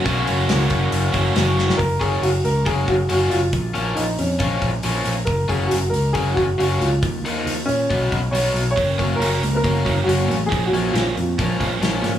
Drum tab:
HH |o-o-o-o-o-o-o---|o-o-o-o-o-o-o-o-|o-o-o-o-o-o-o-o-|o-o-o-o-o-o-o-o-|
SD |----o-------o-oo|----------------|----------------|----------------|
BD |o-----o---o-----|o-o-----o-o-----|o-------o-o-----|o-o-----o-o-----|

HH |o-o-o-o-o-o-o-o-|o-o-o-o-o-o-o-o-|o-o-o-o-o-o-o-o-|
SD |----------------|----------------|----o-------o-o-|
BD |o-------o-o-----|o-o-----o-o-----|o-------o-o-----|